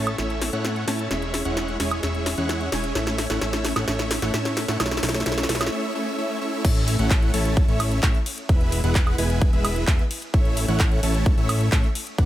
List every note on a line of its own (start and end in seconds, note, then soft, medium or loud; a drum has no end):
0.00 0.16 A1 medium
0.00 0.17 A3 medium
0.00 0.17 C#4 medium
0.00 0.17 E4 medium
0.00 0.17 C#5 medium
0.00 0.17 A5 medium
0.07 closed hi-hat soft
0.07 high woodblock medium
0.18 0.51 A1 medium
0.18 0.50 A3 medium
0.18 0.50 C#4 medium
0.18 0.50 E4 medium
0.18 0.50 C#5 medium
0.18 0.50 E5 medium
0.18 snare medium
0.18 closed hi-hat soft
0.30 closed hi-hat soft
0.42 snare medium
0.42 open hi-hat loud
0.53 0.85 A2 medium
0.53 0.85 A3 medium
0.53 0.85 C#4 medium
0.53 0.85 E4 medium
0.53 0.85 C#5 medium
0.53 0.85 F#5 loud
0.53 closed hi-hat soft
0.65 snare medium
0.65 closed hi-hat soft
0.76 closed hi-hat soft
0.88 1.08 A2 medium
0.88 1.09 A3 medium
0.88 1.09 C#4 medium
0.88 1.09 E4 medium
0.88 1.09 C#5 medium
0.88 1.09 A5 medium
0.88 snare medium
0.88 open hi-hat loud
0.99 closed hi-hat soft
1.11 1.43 E1 loud
1.11 1.43 G#3 medium
1.11 1.43 C#4 medium
1.11 1.43 E4 medium
1.11 1.43 C#5 medium
1.11 1.43 E5 medium
1.11 snare medium
1.11 closed hi-hat medium
1.22 closed hi-hat soft
1.34 snare medium
1.34 open hi-hat loud
1.45 1.78 E1 medium
1.45 1.77 G#3 medium
1.45 1.77 C#4 medium
1.45 1.77 E4 medium
1.45 1.77 C#5 medium
1.45 1.77 F#5 loud
1.45 closed hi-hat medium
1.57 snare medium
1.57 closed hi-hat soft
1.68 closed hi-hat soft
1.80 2.01 E1 medium
1.80 2.01 G#3 medium
1.80 2.01 C#4 medium
1.80 2.01 E4 medium
1.80 2.01 C#5 medium
1.80 2.01 G#5 loud
1.80 snare medium
1.80 open hi-hat loud
1.91 closed hi-hat soft
1.91 high woodblock medium
2.03 2.35 E1 loud
2.03 2.35 G#3 medium
2.03 2.35 C#4 medium
2.03 2.35 E4 medium
2.03 2.35 C#5 medium
2.03 2.35 E5 medium
2.03 snare medium
2.03 closed hi-hat medium
2.15 closed hi-hat soft
2.26 snare medium
2.26 open hi-hat loud
2.38 2.70 E2 medium
2.38 2.70 G#3 medium
2.38 2.70 C#4 medium
2.38 2.70 E4 medium
2.38 2.70 C#5 medium
2.38 2.70 F#5 loud
2.38 closed hi-hat soft
2.49 snare medium
2.49 closed hi-hat medium
2.61 closed hi-hat soft
2.72 2.93 E1 medium
2.72 2.94 G#3 medium
2.72 2.94 C#4 medium
2.72 2.94 E4 medium
2.72 2.94 C#5 medium
2.72 2.94 G#5 medium
2.72 snare medium
2.72 open hi-hat loud
2.84 closed hi-hat medium
2.95 3.28 A1 loud
2.95 3.27 A3 medium
2.95 3.27 C#4 medium
2.95 3.27 E4 medium
2.95 3.27 C#5 medium
2.95 3.27 E5 medium
2.95 snare medium
2.95 closed hi-hat medium
3.07 snare medium
3.07 closed hi-hat soft
3.18 snare medium
3.18 open hi-hat loud
3.30 3.39 A1 loud
3.30 3.40 A3 medium
3.30 3.40 C#4 medium
3.30 3.40 E4 medium
3.30 3.40 C#5 medium
3.30 3.40 F#5 loud
3.30 snare medium
3.30 closed hi-hat medium
3.41 3.74 A1 medium
3.41 3.73 A3 medium
3.41 3.73 C#4 medium
3.41 3.73 E4 medium
3.41 3.73 C#5 medium
3.41 3.73 E5 medium
3.41 snare medium
3.41 closed hi-hat soft
3.53 snare medium
3.53 closed hi-hat soft
3.65 snare medium
3.65 open hi-hat loud
3.76 3.85 A1 loud
3.76 3.86 A3 loud
3.76 3.86 C#4 medium
3.76 3.86 E4 medium
3.76 3.86 C#5 medium
3.76 3.86 F#5 loud
3.76 snare medium
3.76 high woodblock medium
3.88 4.20 A1 medium
3.88 4.20 A3 medium
3.88 4.20 C#4 medium
3.88 4.20 E4 medium
3.88 4.20 C#5 medium
3.88 4.20 E5 medium
3.88 snare loud
3.88 closed hi-hat medium
3.99 snare medium
3.99 closed hi-hat soft
4.11 snare loud
4.11 open hi-hat loud
4.22 4.32 A1 loud
4.22 4.32 A3 loud
4.22 4.32 C#4 medium
4.22 4.32 E4 medium
4.22 4.32 C#5 medium
4.22 4.32 F#5 loud
4.22 snare medium
4.22 closed hi-hat medium
4.34 4.66 A2 medium
4.34 4.66 A3 medium
4.34 4.66 C#4 medium
4.34 4.66 E4 medium
4.34 4.66 C#5 medium
4.34 4.66 E5 medium
4.34 snare loud
4.34 closed hi-hat medium
4.45 snare medium
4.45 closed hi-hat soft
4.57 snare loud
4.57 open hi-hat loud
4.68 4.78 A2 loud
4.68 4.78 A3 loud
4.68 4.78 C#4 medium
4.68 4.78 E4 medium
4.68 4.78 C#5 medium
4.68 4.78 F#5 loud
4.68 snare medium
4.68 closed hi-hat medium
4.80 5.01 B1 loud
4.80 5.01 A3 medium
4.80 5.01 C#4 medium
4.80 5.01 E4 medium
4.80 5.01 C#5 medium
4.80 5.01 E5 medium
4.80 snare loud
4.80 closed hi-hat medium
4.80 high woodblock medium
4.86 snare medium
4.91 snare medium
4.91 closed hi-hat soft
4.97 snare medium
5.03 5.24 B1 loud
5.03 5.24 A3 medium
5.03 5.24 C#4 medium
5.03 5.24 E4 medium
5.03 5.24 C#5 medium
5.03 5.24 E5 medium
5.03 snare loud
5.03 open hi-hat loud
5.09 snare loud
5.14 snare medium
5.14 open hi-hat medium
5.20 snare medium
5.26 5.47 B1 medium
5.26 5.47 A3 medium
5.26 5.47 C#4 medium
5.26 5.47 E4 medium
5.26 5.47 C#5 medium
5.26 5.47 E5 medium
5.26 snare loud
5.26 closed hi-hat medium
5.32 snare medium
5.38 snare medium
5.38 closed hi-hat soft
5.43 snare medium
5.49 5.70 B1 medium
5.49 5.70 A3 medium
5.49 5.70 C#4 medium
5.49 5.70 E4 medium
5.49 5.70 C#5 medium
5.49 5.70 E5 medium
5.49 snare loud
5.49 open hi-hat loud
5.55 snare medium
5.61 snare medium
5.61 closed hi-hat medium
5.61 high woodblock medium
5.67 snare medium
5.72 5.93 A3 medium
5.72 5.93 C#4 medium
5.72 5.93 E4 medium
5.72 5.93 C#5 medium
5.72 5.93 E5 medium
5.95 6.17 A3 medium
5.95 6.17 C#4 medium
5.95 6.17 E4 medium
5.95 6.17 C#5 medium
5.95 6.17 E5 medium
6.18 6.40 A3 medium
6.18 6.40 C#4 medium
6.18 6.40 E4 medium
6.18 6.40 C#5 medium
6.18 6.40 E5 medium
6.41 6.63 A3 medium
6.41 6.63 C#4 medium
6.41 6.63 E4 medium
6.41 6.63 C#5 medium
6.41 6.63 E5 medium
6.65 6.97 A1 loud
6.65 6.96 A3 medium
6.65 6.96 C#4 medium
6.65 6.96 E4 medium
6.65 6.96 C#5 medium
6.65 6.96 E5 medium
6.65 kick loud
6.65 closed hi-hat medium
6.65 crash loud
6.76 closed hi-hat soft
6.88 open hi-hat loud
6.88 ride medium
6.99 7.32 A1 loud
6.99 7.31 A3 loud
6.99 7.31 C#4 medium
6.99 7.31 E4 medium
6.99 7.31 C#5 medium
6.99 7.31 F#5 loud
6.99 closed hi-hat medium
7.10 kick loud
7.10 clap loud
7.10 closed hi-hat medium
7.22 closed hi-hat soft
7.34 7.66 A1 medium
7.34 7.66 A3 loud
7.34 7.66 C#4 medium
7.34 7.66 E4 medium
7.34 7.66 C#5 medium
7.34 7.66 A5 loud
7.34 open hi-hat loud
7.34 ride medium
7.45 closed hi-hat medium
7.57 kick loud
7.57 closed hi-hat medium
7.68 8.01 A1 medium
7.68 8.00 A3 medium
7.68 8.00 C#4 medium
7.68 8.00 E4 medium
7.68 8.00 C#5 medium
7.68 8.00 E5 medium
7.68 closed hi-hat soft
7.80 open hi-hat loud
7.80 ride medium
7.80 high woodblock medium
7.91 closed hi-hat medium
8.03 8.18 A3 medium
8.03 8.18 C#4 medium
8.03 8.18 E4 medium
8.03 8.18 C#5 medium
8.03 8.18 E5 medium
8.03 kick loud
8.03 clap loud
8.03 closed hi-hat medium
8.15 closed hi-hat soft
8.26 open hi-hat loud
8.26 ride medium
8.38 closed hi-hat medium
8.49 8.82 E1 loud
8.49 8.81 G#3 medium
8.49 8.81 B3 medium
8.49 8.81 E4 medium
8.49 8.81 B4 medium
8.49 8.81 E5 medium
8.49 kick loud
8.49 closed hi-hat medium
8.61 closed hi-hat soft
8.72 open hi-hat loud
8.72 ride medium
8.84 9.16 E1 loud
8.84 9.16 G#3 loud
8.84 9.16 B3 medium
8.84 9.16 E4 medium
8.84 9.16 B4 medium
8.84 9.16 F#5 loud
8.84 closed hi-hat medium
8.95 kick loud
8.95 clap loud
8.95 closed hi-hat medium
9.07 closed hi-hat soft
9.07 high woodblock medium
9.18 9.51 E1 loud
9.18 9.50 G#3 loud
9.18 9.50 B3 medium
9.18 9.50 E4 medium
9.18 9.50 B4 medium
9.18 9.50 G#5 loud
9.18 open hi-hat loud
9.18 ride medium
9.30 closed hi-hat medium
9.41 kick loud
9.41 closed hi-hat medium
9.53 9.85 E1 medium
9.53 9.85 G#3 medium
9.53 9.85 B3 medium
9.53 9.85 E4 medium
9.53 9.85 B4 medium
9.53 9.85 E5 medium
9.53 closed hi-hat soft
9.65 open hi-hat loud
9.65 ride medium
9.65 high woodblock medium
9.76 closed hi-hat medium
9.87 10.00 E1 loud
9.87 10.02 B3 medium
9.87 10.02 E4 medium
9.87 10.02 E5 medium
9.87 kick loud
9.87 clap loud
9.87 closed hi-hat medium
9.99 closed hi-hat soft
10.11 open hi-hat loud
10.11 ride medium
10.22 closed hi-hat medium
10.34 10.66 A1 medium
10.34 10.66 A3 medium
10.34 10.66 C#4 medium
10.34 10.66 E4 medium
10.34 10.66 C#5 medium
10.34 10.66 E5 medium
10.34 kick loud
10.34 closed hi-hat medium
10.45 closed hi-hat soft
10.57 open hi-hat loud
10.57 ride medium
10.68 11.01 A1 loud
10.68 11.00 A3 loud
10.68 11.00 C#4 medium
10.68 11.00 E4 medium
10.68 11.00 C#5 medium
10.68 11.00 F#5 loud
10.68 closed hi-hat medium
10.80 kick loud
10.80 clap loud
10.80 closed hi-hat soft
10.91 closed hi-hat soft
11.03 11.35 A1 loud
11.03 11.35 A3 loud
11.03 11.35 C#4 medium
11.03 11.35 E4 medium
11.03 11.35 C#5 medium
11.03 11.35 A5 loud
11.03 open hi-hat loud
11.03 ride medium
11.15 closed hi-hat medium
11.26 kick loud
11.26 closed hi-hat medium
11.38 11.70 A1 medium
11.38 11.70 A3 medium
11.38 11.70 C#4 medium
11.38 11.70 E4 medium
11.38 11.70 C#5 medium
11.38 11.70 E5 medium
11.38 closed hi-hat soft
11.49 open hi-hat loud
11.49 ride medium
11.49 high woodblock medium
11.61 closed hi-hat medium
11.72 11.85 A1 loud
11.72 11.87 A3 medium
11.72 11.87 C#4 medium
11.72 11.87 C#5 medium
11.72 kick loud
11.72 clap loud
11.72 closed hi-hat medium
11.84 closed hi-hat soft
11.95 open hi-hat loud
11.95 ride medium
12.07 closed hi-hat medium
12.18 12.25 B1 loud
12.18 12.25 B3 medium
12.18 12.25 D4 medium
12.18 12.25 F#4 medium
12.18 12.25 D5 medium
12.18 12.25 F#5 medium
12.18 kick loud
12.18 closed hi-hat medium